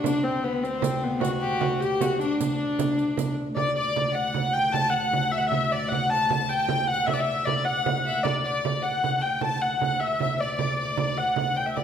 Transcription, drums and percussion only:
0.04 riq, frame drum
0.64 riq, frame drum
0.82 riq, frame drum
1.21 riq, frame drum
1.61 frame drum
1.80 riq, frame drum
2.01 riq, frame drum
2.21 riq
2.40 riq, frame drum
2.60 frame drum
2.79 riq, frame drum
2.98 riq, frame drum
3.17 riq, frame drum
3.57 frame drum
3.76 frame drum
3.96 frame drum
4.34 frame drum
4.55 frame drum
4.74 frame drum
4.94 frame drum
5.13 frame drum
5.52 frame drum
5.71 frame drum
5.92 frame drum
6.10 frame drum
6.30 frame drum
6.69 frame drum
6.89 frame drum
7.08 frame drum
7.47 frame drum
7.67 frame drum
7.86 frame drum
8.25 frame drum
8.45 frame drum
8.65 frame drum
9.04 frame drum
9.23 frame drum
9.41 frame drum
9.62 frame drum
9.81 frame drum
10.20 frame drum
10.41 frame drum
10.59 frame drum
10.78 frame drum
10.97 frame drum
11.36 frame drum
11.56 frame drum
11.77 frame drum

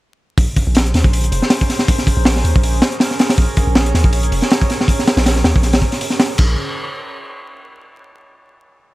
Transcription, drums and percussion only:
0.38 kick, open hi-hat
0.56 kick, open hi-hat
0.75 snare, open hi-hat
0.86 closed hi-hat
0.94 snare, open hi-hat
1.04 kick
1.13 open hi-hat
1.24 closed hi-hat
1.32 open hi-hat
1.42 snare
1.50 snare, open hi-hat
1.61 kick
1.69 snare, open hi-hat
1.79 snare
1.88 kick, open hi-hat
1.98 snare
2.07 kick, open hi-hat
2.25 snare, open hi-hat
2.36 snare
2.45 open hi-hat
2.56 kick
2.63 open hi-hat
2.82 snare, open hi-hat
2.92 closed hi-hat
3.00 snare, open hi-hat
3.11 snare
3.19 snare, open hi-hat
3.29 snare, open hi-hat
3.38 kick, open hi-hat
3.57 kick, open hi-hat
3.75 snare, open hi-hat
3.86 closed hi-hat
3.94 snare, open hi-hat
4.04 kick
4.13 open hi-hat
4.23 closed hi-hat
4.32 open hi-hat
4.42 snare
4.51 snare, open hi-hat
4.61 kick
4.70 snare, open hi-hat
4.81 snare
4.88 kick, open hi-hat
4.99 snare
5.07 snare, open hi-hat
5.17 snare, open hi-hat
5.26 snare, open hi-hat
5.36 snare
5.44 snare, open hi-hat
5.56 kick
5.63 snare, open hi-hat
5.73 snare, open hi-hat
5.82 kick
5.92 snare, open hi-hat
6.01 open hi-hat
6.10 snare
6.20 snare, open hi-hat
6.38 kick, crash

